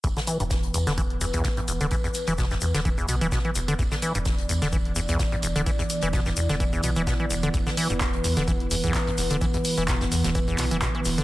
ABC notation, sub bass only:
X:1
M:4/4
L:1/16
Q:"Swing 16ths" 1/4=128
K:C
V:1 name="Sub bass" clef=bass
E,,, z2 E,,,3 E,, E,,,4 B,,, z2 E,,, D,,, | z3 E,,,3 E,, E,,,3 B,,, E,,, z2 E,,,2 | E,,, z2 E,,,3 E,, E,,,4 B,,, z2 E,,, D,,, | z3 E,,,3 E,, E,,,3 B,,, E,,, z2 E,,,2 |
E,,, z2 E,,,3 E,, E,,,4 B,,, z2 E,,, D,,, | z3 E,,,3 E,, E,,,3 B,,, E,,, z2 E,,,2 |]